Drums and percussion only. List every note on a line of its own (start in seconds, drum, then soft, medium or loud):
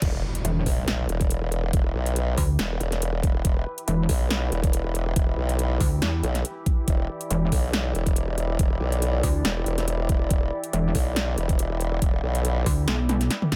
0.02 kick loud
0.02 closed hi-hat medium
0.02 crash loud
0.35 closed hi-hat medium
0.45 closed hi-hat medium
0.66 kick medium
0.66 open hi-hat medium
0.88 snare loud
0.88 closed hi-hat medium
1.09 closed hi-hat medium
1.21 kick loud
1.21 closed hi-hat medium
1.30 closed hi-hat medium
1.52 closed hi-hat medium
1.73 kick loud
1.73 closed hi-hat medium
2.06 closed hi-hat medium
2.16 closed hi-hat medium
2.38 kick medium
2.38 open hi-hat medium
2.59 snare loud
2.59 closed hi-hat medium
2.81 closed hi-hat medium
2.92 snare soft
2.92 closed hi-hat medium
3.02 closed hi-hat medium
3.23 kick loud
3.23 closed hi-hat medium
3.45 kick loud
3.45 closed hi-hat medium
3.78 closed hi-hat medium
3.88 closed hi-hat medium
4.09 kick medium
4.09 open hi-hat medium
4.30 snare loud
4.30 closed hi-hat medium
4.52 closed hi-hat medium
4.64 kick loud
4.64 closed hi-hat medium
4.73 closed hi-hat medium
4.95 closed hi-hat medium
5.16 kick loud
5.16 closed hi-hat medium
5.49 closed hi-hat soft
5.59 closed hi-hat medium
5.80 kick medium
5.80 open hi-hat medium
6.02 snare loud
6.02 closed hi-hat medium
6.23 closed hi-hat medium
6.35 snare soft
6.35 closed hi-hat medium
6.45 closed hi-hat medium
6.66 kick loud
6.66 closed hi-hat medium
6.88 kick loud
6.88 closed hi-hat medium
7.21 closed hi-hat soft
7.30 closed hi-hat medium
7.52 kick medium
7.52 open hi-hat medium
7.73 snare loud
7.73 closed hi-hat medium
7.95 closed hi-hat soft
8.06 kick loud
8.06 closed hi-hat medium
8.16 closed hi-hat medium
8.38 closed hi-hat medium
8.59 kick loud
8.59 closed hi-hat medium
8.92 closed hi-hat soft
9.02 closed hi-hat medium
9.23 kick medium
9.23 open hi-hat medium
9.45 snare loud
9.45 closed hi-hat medium
9.66 closed hi-hat soft
9.78 snare soft
9.78 closed hi-hat medium
9.88 closed hi-hat medium
10.09 kick loud
10.09 closed hi-hat medium
10.30 kick loud
10.30 closed hi-hat medium
10.64 closed hi-hat medium
10.73 closed hi-hat medium
10.95 kick medium
10.95 open hi-hat medium
11.16 snare loud
11.16 closed hi-hat medium
11.38 closed hi-hat soft
11.49 kick medium
11.49 closed hi-hat medium
11.59 closed hi-hat medium
11.80 closed hi-hat medium
12.02 kick loud
12.02 closed hi-hat medium
12.35 closed hi-hat medium
12.45 closed hi-hat medium
12.66 kick medium
12.66 open hi-hat medium
12.88 snare loud
12.88 closed hi-hat medium
13.09 closed hi-hat medium
13.09 high tom medium
13.21 snare soft
13.21 closed hi-hat medium
13.31 snare medium
13.31 closed hi-hat medium
13.42 mid tom medium
13.52 kick loud
13.52 snare loud
13.52 closed hi-hat medium